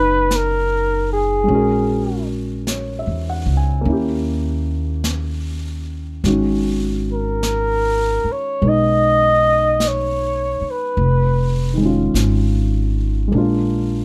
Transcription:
Already playing: F#1 G#3 C#4 D#4 F#4 B4 C#5
0.31 brush sweep, snare, hi-hat pedal
0.36 A#4
1.13 G#4
1.44 G#3 C#4
1.48 A#1 F#4, brush sweep
1.54 A#4
2.67 C#5, brush sweep, snare, hi-hat pedal
2.99 E5
3.07 E2
3.30 F#5
3.46 C#2
3.57 G#5
3.81 D#2 A#3, brush sweep
3.85 C#4 E4
3.93 G4
5.04 brush sweep, snare, hi-hat pedal
6.24 G#1 D#3 G#3 C#4 F#4, brush sweep, snare
7.13 A#4
7.43 brush sweep, snare, hi-hat pedal
8.24 muted upright bass stroke
8.32 C#5
8.61 B1 G#3 B3, brush sweep
8.65 D#4 D#5
9.80 brush sweep, snare, hi-hat pedal
9.88 C#5
10.61 muted upright bass stroke
10.71 B4
10.97 F1, brush sweep
11.74 D#3 G#3
11.82 C#4 F4
12.14 G#1, brush sweep, snare, hi-hat pedal
13.28 G#3, brush sweep
13.32 A#1 A#3 D4
13.38 F4

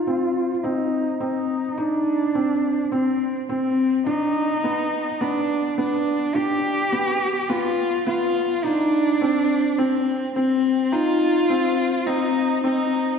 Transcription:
Already playing: F4
0.07 C4
0.63 C4 D#4
1.20 C4 D#4
1.78 D4 D#4
2.35 C4
2.92 C4
3.49 C4
4.06 D4 D#4
4.64 B3
5.21 B3 D4
5.78 B3 D4
6.35 D4 G4
6.92 B3
7.49 B3 F4
8.07 B3 F4
8.64 D4 D#4
9.21 C4
9.78 C4
10.35 C4
10.92 D#4 F4
11.50 C4
12.06 C4 D#4
12.64 C4 D#4

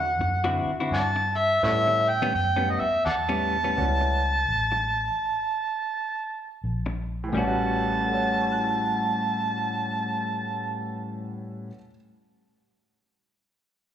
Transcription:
Already playing: E2 F#5
0.19 F#2, muted clean electric guitar stroke
0.44 D3 C4 E4 F#4
0.65 muted fingered electric bass stroke
0.80 D3 C4 E4 F#4
0.91 G2 D5 F#5 A5
1.16 muted clean electric guitar stroke
1.38 E5
1.63 A2 G3 B3 C#4 E4 A4 B4 C#5 E5
1.87 muted clean electric guitar stroke
2.09 G5
2.22 A2 G3 B3 C#4
2.35 F#2 G5, muted clean electric guitar stroke
2.57 A2 G3 B3 C#4
2.70 D#5
2.80 E5, muted fingered electric bass stroke
3.06 E2 D5 F#5 A5, muted clean electric guitar stroke
3.29 A2 G3 B3 C#4
3.64 A2 G3 B3 C#4
3.77 C#2 G3 B3 C#4 E4 F#4
4.01 muted clean electric guitar stroke
4.48 A1
4.72 muted clean electric guitar stroke
6.64 A#1
6.86 muted clean electric guitar stroke
7.24 A2
7.28 E3
7.33 A1 A2 G3 C#4 F#4 A5
7.38 B3
7.43 C#4
7.48 F#4
8.07 A4
8.14 C#5
8.22 F#5
8.31 A5
8.41 C#6
8.52 F#6
8.63 A6

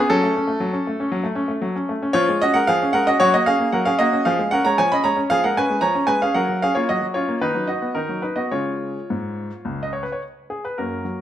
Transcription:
Already playing: G#4
0.10 F#3 C#4 A4
0.23 A3
0.36 C#4
0.47 A3
0.60 F#3
0.73 C#4
0.87 A3
1.00 C#4
1.12 F#3
1.24 A3
1.35 C#4
1.48 A3
1.62 F#3
1.76 C#4
1.89 A3
2.02 C#4
2.13 F3 F4 C#5
2.29 G#3
2.42 C#4 F#4 D#5
2.54 G#3 A#4 F#5
2.67 F3 G#4 F5
2.82 C#4
2.93 G#3 A#4 F#5
3.07 C#4 F#4 D#5
3.20 F#3 F#4 C#5
3.34 A#3 F#4 D#5
3.46 C#4 G#4 F5
3.59 A#3
3.72 F#3 A#4 F#5
3.85 C#4 G#4 F5
3.99 A#3 F#4 D#5
4.12 C#4
4.25 F3 G#4 F5
4.39 G#3
4.51 C#4 A#4 F#5
4.65 G#3 C#5 A#5
4.78 F3 C#5 G#5
4.92 C#4 D#5 B5
5.04 G#3 C#5 A#5
5.17 C#4
5.30 F3 G#4 F5
5.44 G#3 A#4 F#5
5.57 C#4 B4 G#5
5.70 G#3
5.81 F3 C#5 A#5
5.95 C#4
6.07 G#3 B4 G#5
6.22 C#4 G#4 F5
6.34 F#3 A#4 F#5
6.48 F#3
6.62 C#4 G#4 F5
6.75 A#3 F4 C#5
6.89 F#3 F#4 D#5
7.02 F#3
7.14 C#4 F4 C#5
7.28 A#3
7.41 D#3 D#4 B4
7.55 F#3
7.67 D#4 F#4 D#5
7.82 B3
7.95 D#3 D#4 A#4
8.09 F#3
8.22 D#4 B4
8.36 B3 F#4 D#5
8.51 C#3 G#3 F4 C#5
9.10 G#2
9.65 C#2
9.83 D#5
9.93 C#5
10.03 B4
10.12 C#5
10.50 G#4
10.65 B4
10.78 F#2 A#3 F#4 A#4
11.05 F#3

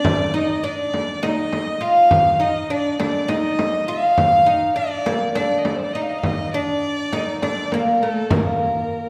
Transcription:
Already playing: D4 D5
0.05 frame drum
0.34 D#4 D#5
0.64 D4 D5
0.94 frame drum
1.23 D#4 D#5, frame drum
1.53 frame drum
1.81 F4 F5
2.11 frame drum
2.40 D#4 D#5
2.70 D4 D5
2.99 D4 D5, frame drum
3.28 D#4 D#5, frame drum
3.59 frame drum
3.88 F4 F5
4.18 frame drum
4.46 D#4
4.76 D4 D5
5.06 A#3, frame drum
5.35 D4 D5, frame drum
5.58 D#5
5.65 D5, frame drum
5.75 C5
5.84 D5
5.93 D#4 D#5
6.02 F5
6.09 D#5
6.18 F5
6.23 D#5, frame drum
6.53 D4 D5
7.13 D#4, frame drum
7.42 D4 D5, frame drum
7.71 A#3 A#4, frame drum
8.02 A3 A4
8.30 A#3 A#4, frame drum

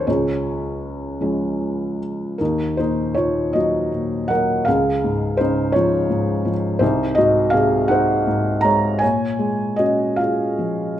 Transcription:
0.07 C#2 F4 G#4 C#5
1.21 F3 G#3 C#4
2.38 D#2 D#4 A#4
2.77 A#2 D#4 C5
3.14 D#3 F4 C#5
3.53 F#3 F#4 D#5
3.92 A#2
4.28 F#3 A#4 F#5
4.65 C#2 G#4 F5
5.04 G#2
5.37 C#3 D#4 C5
5.72 F3 F4 C#5
6.10 G#2
6.45 F3
6.79 C2 D#4 C5
7.15 G#2 F#4 D#5
7.50 C3 G#4 F5
7.88 D#4 C5 F#5
8.27 G#2
8.61 G#3 C#5 A#5
8.99 A#2 C#5 G#5
9.39 G#3
9.76 C#4 F#4 D#5
10.16 F4 G#4 F5
10.59 F3

